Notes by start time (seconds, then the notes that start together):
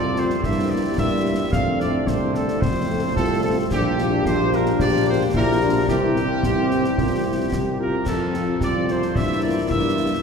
Already playing: C2 F3 C4 F4 D5
0.16 A3 C4 F4 C5, snare
0.30 snare
0.43 G2 G3 A#3 E4 E5, concert bass drum, snare
0.70 A#3 E4 D5
0.97 G2 E4 E5, concert bass drum, snare
1.26 A#3 E4
1.51 F2 A3 C4 D4 F5, concert bass drum, snare
1.79 A3 C4 A4 D5, snare
2.06 C2 C5, concert bass drum, snare
2.33 A3 C4 A4, snare
2.48 snare
2.60 F2 C4 C5, concert bass drum, snare
2.90 A3 C4 A4
3.15 C2 F4 A4, concert bass drum, snare
3.43 A3 C4 A4
3.71 A#1 G3 A#3 D4 G4, concert bass drum, snare, crash
3.98 snare
4.25 A#1 C5, concert bass drum, snare
4.52 A#4, snare
4.66 snare
4.80 A#1 A#3 D4 G4 D5, concert bass drum, snare
5.08 C5
5.34 A#1 A#3 D4 E4 G4 A#4, concert bass drum, snare
5.63 D4
5.87 C2 E3 G3 C4 E4 G4, concert bass drum, snare
6.16 snare
6.43 C2 C4, concert bass drum, snare
6.71 snare
6.84 snare
6.98 C2 F4, concert bass drum, snare
7.26 E4
7.52 C2 G4, concert bass drum, snare
7.80 F4 A#4
8.06 F2 F3 C4 A4, concert bass drum, snare, crash
8.34 F3 C4 F4, snare
8.61 C2 F4 D5, concert bass drum, snare
8.88 F3 C4 F4 C5, snare
9.02 snare
9.15 G2 E3 A#3 E4 E5, concert bass drum, snare
9.42 A#3 E4 D5
9.69 G2 E5, concert bass drum, snare
9.98 A#3 E4